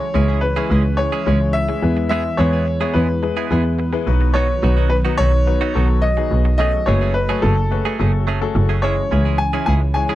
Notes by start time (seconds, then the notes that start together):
Already playing: E3 G#3 C#4 C#5
0.00 muted clean electric guitar stroke
0.14 C#2 G#3 C#4 E4 G#4 C#5
0.28 G#3 C#4 E4 G#4
0.41 B4, muted clean electric guitar stroke
0.56 G#3 C#4 E4 G#4 C#5
0.70 C#2 G#3 C#4 E4 G#4
0.84 muted clean electric guitar stroke
0.97 G#3 C#4 E4 G#4 C#5, muted clean electric guitar stroke
1.12 G#3 C#4 E4 G#4
1.26 C#2 G#3 C#4 E4 G#4 C#5
1.41 muted clean electric guitar stroke
1.53 E5, muted clean electric guitar stroke
1.68 G#3 C#4 E4 G#4 E5, muted clean electric guitar stroke
1.82 E2 G#3 B3 E4 G#4 B4
1.97 muted clean electric guitar stroke
2.09 G#3 B3 E4 G#4 E5
2.25 muted clean electric guitar stroke
2.37 E2 G#3 B3 E4 G#4 B4 C#5
2.53 G#3 B3 E4 G#4
2.67 muted clean electric guitar stroke
2.80 G#3 B3 E4 G#4 C#5
2.94 E2 G#3 B3 E4 G#4 B4
3.23 G#3 B3 E4 G#4 B4, muted clean electric guitar stroke
3.37 G#3 B3 E4 G#4
3.51 E2 G#3 B3 E4 G#4 B4
3.65 muted clean electric guitar stroke
3.79 muted clean electric guitar stroke
3.93 G#3 B3 E4 G#4 B4, muted clean electric guitar stroke
4.07 B1 D#3 F#3 B3 D#4 F#4 B4
4.21 muted clean electric guitar stroke
4.34 F#3 B3 D#4 F#4 C#5
4.49 muted clean electric guitar stroke
4.63 B1 F#3 B3 D#4 F#4 B4
4.77 F#3 B3 D#4 F#4
4.90 B4, muted clean electric guitar stroke
5.05 F#3 B3 D#4 F#4 B4
5.18 B1 F#3 B3 D#4 F#4 C#5
5.33 muted clean electric guitar stroke
5.47 F#3 B3 D#4 F#4 B4, muted clean electric guitar stroke
5.61 F#3 B3 D#4 F#4
5.75 B1 F#3 B3 D#4 F#4 A4
5.89 muted clean electric guitar stroke
6.02 D#5, muted clean electric guitar stroke
6.17 F#3 B3 D#4 F#4 G#4, muted clean electric guitar stroke
6.31 B1
6.45 muted clean electric guitar stroke
6.58 F#3 A3 C#4 F#4 G#4 A4 D#5
6.73 muted clean electric guitar stroke
6.86 F#1 F#3 A3 C#4 F#4 G#4 B4 C#5
7.01 F#3 A3 C#4 G#4
7.14 B4, muted clean electric guitar stroke
7.29 F#3 A3 C#4 F#4 G#4 A4
7.42 F#1 F#3 A3 C#4 G#4 A4
7.57 muted clean electric guitar stroke
7.71 A3 C#4 F#4 G#4 B4, muted clean electric guitar stroke
7.85 F#3 A3 C#4 G#4
7.99 F#1 F#3 A3 C#4 F#4 G#4 A4
8.13 muted clean electric guitar stroke
8.27 F#3 A3 C#4 G#4
8.41 A3 C#4 F#4 G#4 A4, muted clean electric guitar stroke
8.55 F#1, muted clean electric guitar stroke
8.69 F#3 A3 C#4 G#4
8.82 E3 G#3 C#4 E4 G#4 C#5
8.97 muted clean electric guitar stroke
9.11 C#2 G#3 C#4 E4 G#4 C#5
9.25 G#3 C#4 E4 G#4
9.38 G#5, muted clean electric guitar stroke
9.53 G#3 C#4 E4 G#4 C#5
9.66 C#2 G#3 C#4 E4 G#4 G#5
9.82 muted clean electric guitar stroke
9.94 G#3 C#4 E4 G#4 C#5 G#5, muted clean electric guitar stroke
10.09 G#3 C#4 E4 G#4